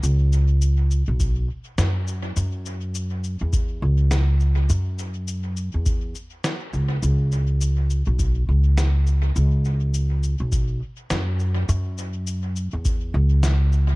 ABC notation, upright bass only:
X:1
M:4/4
L:1/16
Q:"Swing 16ths" 1/4=103
K:Bmix
V:1 name="Upright bass" clef=bass
C,,6- C,, B,,,3 z2 F,,4 | F,,6- F,, E,,3 C,,6 | F,,6- F,, E,,3 z4 C,,2 | C,,6- C,, B,,,3 C,,6 |
C,,6- C,, B,,,3 z2 F,,4 | F,,6- F,, E,,3 C,,6 |]